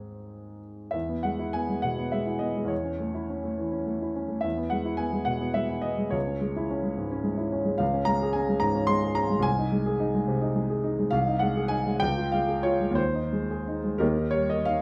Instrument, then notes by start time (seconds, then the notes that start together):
grand piano
Already playing: G#2 G#3 C4 D#4 G#4
0.91 E2 E5
1.09 B3
1.23 G#3 F#5
1.39 E4
1.53 B3 G#5
1.69 G#3
1.82 B2 F#5
1.98 B3
2.12 G#3 E5
2.27 E4
2.39 B3 D#5
2.57 G#3
2.64 E2 C#5
2.84 C#4
3.00 A3
3.14 E4
3.29 C#4
3.44 A3
3.58 E3
3.72 C#4
3.87 A3
4.02 E4
4.16 C#4
4.28 A3
4.41 E2 E5
4.57 B3
4.70 G#3 F#5
4.85 E4
4.97 B3 G#5
5.13 G#3
5.25 B2 F#5
5.41 B3
5.54 G#3 E5
5.69 E4
5.82 B3 D#5
5.98 G#3
6.11 C#2 C#5
6.27 C#4
6.41 G#3
6.56 E4
6.70 C#4
6.83 G#3
6.97 G#2
7.11 C#4
7.24 G#3
7.38 E4
7.52 C#4
7.65 G#3
7.78 C#2 F5
7.94 C#4
8.05 G#3 A#5
8.22 G#4
8.33 C#4 G#5
8.49 G#3
8.60 G#2 A#5
8.75 C#4
8.87 G#3 C6
9.04 G#4
9.15 C#4 A#5
9.30 G#3
9.39 C2 G#5
9.59 D#4
9.72 G#3
9.86 G#4
10.00 D#4
10.14 G#3
10.28 C3
10.42 D#4
10.56 G#3
10.70 G#4
10.84 D#4
10.99 G#3
11.11 C2 F5
11.27 D#4
11.39 G#3 F#5
11.57 G#4
11.68 D#4 G#5
11.86 G#3
12.00 C#2 G5
12.18 F4
12.32 G#3 F5
12.48 G#4
12.63 F4 C#5
12.81 G#3
12.91 D#2
12.95 C5
13.15 D#4
13.33 G#3
13.51 G#4
13.68 D#4
13.84 G#3
13.98 D#2 D#4 G4 A#4
14.17 D#4
14.31 G3 C#5
14.50 A#4 D#5
14.65 D#4 F5